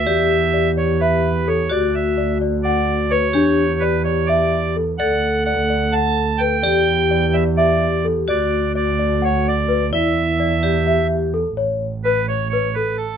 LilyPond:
<<
  \new Staff \with { instrumentName = "Accordion" } { \time 7/8 \key e \dorian \tempo 4 = 128 e''4. cis''8 b'4 cis''8 | d''8 e''4 r8 d''4 cis''8~ | cis''4 b'8 cis''8 d''4 r8 | fis''4 fis''4 a''4 g''8~ |
g''4. e''8 d''4 r8 | d''4 d''4 cis''8 d''4 | e''2~ e''8 r4 | r4 b'8 cis''8 cis''8 b'8 a'8 | }
  \new Staff \with { instrumentName = "Celesta" } { \time 7/8 \key e \dorian d''4 d''8 d''8 e''4 a'8 | d''4 d''8 d''8 fis''4 b'8 | d'4 d''8 d''8 e''4 a'8 | d''4 d''8 d''8 fis''4 b'8 |
d''4 d''8 d''8 e''4 a'8 | d''4 d''8 d''8 fis''4 b'8 | d''4 d''8 d''8 e''4 a'8 | cis''4 b'8 cis''8 b'8 a'4 | }
  \new Staff \with { instrumentName = "Vibraphone" } { \time 7/8 \key e \dorian g'2.~ g'8 | fis'2.~ fis'8 | g'2. r8 | a'2.~ a'8 |
g'2.~ g'8 | fis'2.~ fis'8 | e'4. g'4. r8 | r2. r8 | }
  \new Staff \with { instrumentName = "Double bass" } { \clef bass \time 7/8 \key e \dorian e,2.~ e,8 | d,2.~ d,8 | e,2.~ e,8 | d,2.~ d,8 |
e,2.~ e,8 | d,2.~ d,8 | e,2.~ e,8 | a,,2.~ a,,8 | }
>>